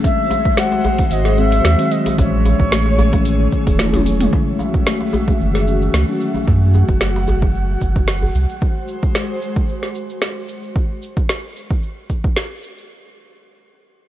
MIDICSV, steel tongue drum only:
0, 0, Header, 1, 2, 480
1, 0, Start_track
1, 0, Tempo, 535714
1, 35, Time_signature, 4, 2, 24, 8
1, 12616, End_track
2, 0, Start_track
2, 0, Title_t, "Steel tongue drum"
2, 0, Program_c, 0, 114
2, 29, Note_on_c, 0, 56, 103
2, 154, Note_off_c, 0, 56, 0
2, 511, Note_on_c, 0, 56, 104
2, 635, Note_off_c, 0, 56, 0
2, 748, Note_on_c, 0, 56, 74
2, 874, Note_off_c, 0, 56, 0
2, 990, Note_on_c, 0, 51, 92
2, 1115, Note_off_c, 0, 51, 0
2, 1118, Note_on_c, 0, 68, 100
2, 1226, Note_off_c, 0, 68, 0
2, 1469, Note_on_c, 0, 56, 102
2, 1594, Note_off_c, 0, 56, 0
2, 1597, Note_on_c, 0, 54, 81
2, 1664, Note_off_c, 0, 54, 0
2, 1948, Note_on_c, 0, 56, 96
2, 2074, Note_off_c, 0, 56, 0
2, 2429, Note_on_c, 0, 57, 105
2, 2554, Note_off_c, 0, 57, 0
2, 2669, Note_on_c, 0, 56, 77
2, 2794, Note_off_c, 0, 56, 0
2, 2915, Note_on_c, 0, 51, 97
2, 3037, Note_off_c, 0, 51, 0
2, 3044, Note_on_c, 0, 68, 100
2, 3149, Note_off_c, 0, 68, 0
2, 3395, Note_on_c, 0, 57, 106
2, 3517, Note_off_c, 0, 57, 0
2, 3525, Note_on_c, 0, 54, 82
2, 3588, Note_off_c, 0, 54, 0
2, 3873, Note_on_c, 0, 56, 89
2, 3996, Note_off_c, 0, 56, 0
2, 4356, Note_on_c, 0, 57, 95
2, 4478, Note_off_c, 0, 57, 0
2, 4600, Note_on_c, 0, 56, 76
2, 4720, Note_off_c, 0, 56, 0
2, 4837, Note_on_c, 0, 51, 97
2, 4958, Note_off_c, 0, 51, 0
2, 4963, Note_on_c, 0, 68, 96
2, 5069, Note_off_c, 0, 68, 0
2, 5319, Note_on_c, 0, 57, 87
2, 5439, Note_off_c, 0, 57, 0
2, 5446, Note_on_c, 0, 54, 75
2, 5508, Note_off_c, 0, 54, 0
2, 12616, End_track
0, 0, End_of_file